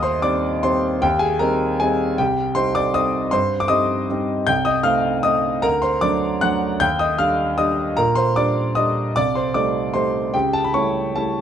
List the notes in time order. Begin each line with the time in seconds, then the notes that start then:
Already playing: D#2 D#5 D#6
0.03 C5 C6
0.22 G3 C4 D#4 D5 D6
0.63 G3 C4 D#4 C5 C6
1.02 D#2 G4 G5
1.19 G#4 G#5
1.39 G3 C4 D#4 A#4 A#5
1.80 G3 C4 D#4 G#4 G#5
2.18 C2 G4 G5
2.55 G3 C4 D#4 C5 C6
2.75 D5 D6
2.94 G3 C4 D#4 D#5 D#6
3.31 G2 C5 C6
3.60 D6
3.68 G3 C4 D#4 D#5 D#6
4.10 G3 C4 D#4
4.47 C2 G5 G6
4.65 D#5 D#6
4.83 A3 C4 D#4 F5 F6
5.23 A3 C4 D#4 D#5 D#6
5.62 D2 A#4 A#5
5.82 C5 C6
6.01 F#3 A3 D4 D5 D6
6.41 F#3 A3 D4 F#5 F#6
6.80 D#2 G5 G6
6.99 D#5 D#6
7.19 G3 D4 F5 F6
7.58 G3 D4 D#5 D#6
7.97 A#2 A#4 A#5
8.15 C5 C6
8.36 G3 D4 D5 D6
8.75 G3 D4 D#5 D#6
9.16 C2 D5 D6
9.35 C5 C6
9.54 G3 A3 D#4 D5 D6
9.94 G3 A3 D#4 C5 C6
10.34 C#2 G4 G5
10.53 A5
10.64 B5
10.74 G3 A3 E4 C#5 C#6
11.16 G3 A3 E4 A4 A5